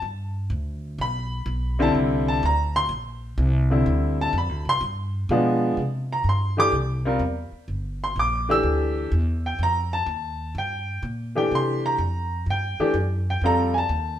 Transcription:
0.02 G2
0.50 D2
0.98 B1 B5
1.46 B1
1.79 D3 G3 C4 E4 A5
1.95 C2
2.28 A5
2.43 D2 A#5
2.76 C6
2.89 A#1
3.38 C2
3.70 D3 G3 C4 E4
3.86 D2
4.21 A5
4.33 F2
4.38 B5
4.49 D2
4.65 C2
4.69 C6
4.81 G2
5.29 B2 F3 G#3 B3 D4
5.77 C3
6.13 A#5
6.24 G2
6.29 C6
6.57 E3 A3 D4 G4 D6
6.72 C2
7.05 G3 C4 F4 A#4
7.19 E2
7.52 muted upright bass stroke
7.68 G1
8.04 C6
8.16 A#1 D6
8.49 E3 A3 D4 G4 E6
8.63 D2
9.12 E2
9.46 G5
9.59 F2
9.63 A#5
9.93 A5
10.06 D#2
10.55 G2 G5
11.03 A#2
11.35 E3 A3 D4 G4 G5
11.51 C3 C6
11.86 A#5
11.98 F2
12.46 G2
12.50 G5
12.79 E3 A3 D4 G4, muted upright bass stroke
12.94 F#2
13.30 G5
13.41 F2 G3 C4 F4 A4
13.46 A#5
13.74 G#5 A5
13.89 D#2

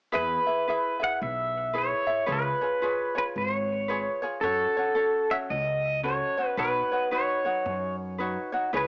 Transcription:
0.12 E2 E4 G#4 B4 E5
0.47 E4 G#4 E5
0.67 E4 G#4 B4 E5
1.00 E4 G#4 E5
1.04 F#5
1.22 B1 E5
1.73 E4 G#4 B4 E5
1.78 C#5
2.07 E4 G#4 E5
2.26 C#2 F4 G#4 B4 C#5
2.32 B4
2.61 F4 G#4 C#5
2.82 F4 G#4 B4 C#5
3.15 F4 G#4 B4 C#5
3.36 G#1 C#5
3.88 F4 G#4 B4 C#5
4.22 F4 G#4 C#5
4.41 F#2 C#4 F#4 A4 C#5
4.77 C#4 F#4 C#5
4.95 C#4 F#4 A4 C#5
5.31 C#4 F#4 C#5 E5
5.50 C#2 D#5
6.03 C#4 F#4 A4 C#5
6.37 C#4 F#4 C#5
6.48 B4
6.57 B1 D#4 F#4 B4 C#5
6.92 D#4 F#4 C#5
7.11 D#4 F#4 B4 C#5
7.45 D#4 F#4 C#5
7.66 F#2
8.19 D#4 F#4 B4 C#5
8.52 D#4 F#4 C#5
8.73 C#2 E4 G#4 B4 C#5

